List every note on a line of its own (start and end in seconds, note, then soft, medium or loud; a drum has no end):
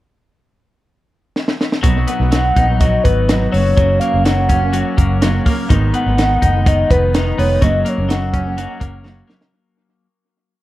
1.36 snare medium
1.48 snare medium
1.61 snare medium
1.72 snare medium
1.83 2.04 B1 medium
1.83 2.20 B2 medium
1.83 2.31 F#3 medium
1.83 2.21 F#3 medium
1.83 2.20 B3 medium
1.83 2.18 D#4 medium
1.83 kick medium
1.83 closed hi-hat medium
2.07 3.03 B3 medium
2.07 2.82 F#5 loud
2.07 closed hi-hat medium
2.19 2.51 B1 medium
2.19 2.56 F#3 soft
2.19 2.57 B3 medium
2.19 2.56 D#4 medium
2.32 2.80 F#3 medium
2.32 snare loud
2.32 closed hi-hat medium
2.56 2.98 A#1 medium
2.56 2.68 B2 medium
2.56 2.69 F#3 medium
2.56 2.69 B3 medium
2.56 3.58 D#4 medium
2.56 2.67 D#4 medium
2.56 kick medium
2.56 closed hi-hat medium
2.68 3.30 F#3 soft
2.68 3.30 B3 soft
2.68 3.29 D#4 soft
2.80 3.29 F#3 medium
2.80 3.05 D#5 medium
2.80 kick medium
2.80 closed hi-hat medium
3.04 3.46 G#1 medium
3.04 3.58 B3 soft
3.04 3.52 B4 medium
3.04 kick medium
3.04 closed hi-hat medium
3.29 3.53 B2 medium
3.29 3.52 F#3 medium
3.29 3.53 F#3 medium
3.29 3.54 B3 medium
3.29 3.55 D#4 medium
3.29 snare loud
3.29 closed hi-hat medium
3.52 3.74 F#1 medium
3.52 3.78 C#3 medium
3.52 3.75 F#3 medium
3.52 3.78 F#3 medium
3.52 3.79 A#3 medium
3.52 3.75 C#5 medium
3.52 open hi-hat medium
3.56 3.79 C#4 medium
3.75 3.98 F#1 loud
3.75 4.14 F#2 medium
3.75 4.14 C#3 medium
3.75 4.24 F#3 medium
3.75 4.15 F#3 medium
3.75 3.99 C#5 medium
3.75 kick loud
3.75 closed hi-hat medium
3.80 4.14 A#3 medium
3.80 4.13 C#4 medium
4.00 4.96 A#3 medium
4.00 4.23 F5 medium
4.00 closed hi-hat medium
4.14 4.83 F#1 medium
4.14 4.50 F#3 soft
4.14 4.51 A#3 soft
4.14 4.50 C#4 medium
4.25 4.72 F#3 medium
4.25 snare loud
4.25 closed hi-hat medium
4.49 4.62 C#3 medium
4.49 4.63 F#3 medium
4.49 4.63 A#3 medium
4.49 5.75 C#4 medium
4.49 kick medium
4.49 closed hi-hat medium
4.53 4.61 C#4 medium
4.62 5.21 F#3 soft
4.62 5.23 A#3 soft
4.62 5.22 C#4 soft
4.73 5.21 F#3 medium
4.73 closed hi-hat medium
4.97 5.39 F#1 loud
4.97 5.45 A#3 soft
4.97 kick medium
4.97 closed hi-hat medium
5.21 5.45 C#3 medium
5.21 5.69 F#3 medium
5.21 5.46 F#3 medium
5.21 5.47 A#3 medium
5.21 5.47 C#4 medium
5.21 snare loud
5.21 closed hi-hat medium
5.46 5.70 C#3 medium
5.46 5.70 F#3 medium
5.46 5.75 A#3 medium
5.46 5.70 A#3 medium
5.46 5.71 C#4 medium
5.46 kick medium
5.46 open hi-hat medium
5.69 5.91 G#1 loud
5.69 6.06 G#2 medium
5.69 6.17 D#3 medium
5.69 6.06 D#3 medium
5.69 6.06 G#3 medium
5.69 6.07 B3 medium
5.69 6.05 D#4 medium
5.69 kick loud
5.69 closed hi-hat medium
5.94 6.89 B3 medium
5.94 6.69 F#5 loud
5.94 closed hi-hat medium
6.06 6.37 G#1 medium
6.06 6.42 G#3 soft
6.06 6.42 B3 medium
6.06 6.42 D#4 medium
6.18 6.65 D#3 medium
6.18 snare loud
6.18 closed hi-hat medium
6.42 6.83 F#1 loud
6.42 6.54 D#3 medium
6.42 6.55 G#3 medium
6.42 6.54 B3 medium
6.42 7.66 D#4 medium
6.42 6.53 D#4 medium
6.42 kick medium
6.42 closed hi-hat medium
6.54 7.13 G#3 soft
6.54 7.14 B3 soft
6.54 7.14 D#4 soft
6.66 7.14 D#3 medium
6.66 6.92 D#5 loud
6.66 kick loud
6.66 closed hi-hat medium
6.90 7.31 F1 medium
6.90 7.37 B3 medium
6.90 7.41 B4 loud
6.90 kick loud
6.90 closed hi-hat medium
7.13 7.37 D#3 medium
7.13 7.61 D#3 medium
7.13 7.38 G#3 medium
7.13 7.39 B3 medium
7.13 7.39 D#4 medium
7.13 snare loud
7.13 closed hi-hat medium
7.38 7.58 F1 medium
7.38 7.62 D#3 medium
7.38 7.62 G#3 medium
7.38 7.67 B3 medium
7.38 7.63 B3 medium
7.38 7.63 D#4 medium
7.38 7.62 C#5 medium
7.38 open hi-hat medium
7.62 7.82 F#1 loud
7.62 7.98 F#2 medium
7.62 7.98 C#3 medium
7.62 8.08 F#3 medium
7.62 7.98 F#3 medium
7.62 7.98 A#3 medium
7.62 7.96 C#4 medium
7.62 7.90 D#5 loud
7.62 kick loud
7.62 closed hi-hat medium
7.85 8.80 A#3 medium
7.85 8.10 C#5 medium
7.85 closed hi-hat medium
7.98 8.66 F#1 medium
7.98 8.34 F#3 soft
7.98 8.34 A#3 medium
7.98 8.33 C#4 medium
8.09 8.57 F#3 medium
8.09 9.25 F#5 loud
8.09 snare loud
8.09 closed hi-hat medium
8.33 8.45 C#3 medium
8.33 8.46 F#3 medium
8.33 8.45 A#3 medium
8.33 10.07 C#4 medium
8.33 8.44 C#4 medium
8.33 kick medium
8.33 closed hi-hat medium
8.45 9.05 F#3 soft
8.45 9.06 A#3 soft
8.45 9.07 C#4 soft
8.58 9.04 F#3 medium
8.58 closed hi-hat medium
8.80 9.21 F#1 loud
8.80 9.27 A#3 medium
8.80 kick medium
8.80 closed hi-hat medium
9.04 9.27 C#3 medium
9.04 10.07 F#3 medium
9.04 9.29 F#3 medium
9.04 9.29 A#3 medium
9.04 9.30 C#4 medium
9.04 snare medium
9.27 9.52 C#3 medium
9.27 9.53 F#3 medium
9.27 10.06 A#3 medium
9.27 9.53 A#3 medium
9.27 snare medium
9.32 9.54 C#4 medium
9.41 snare medium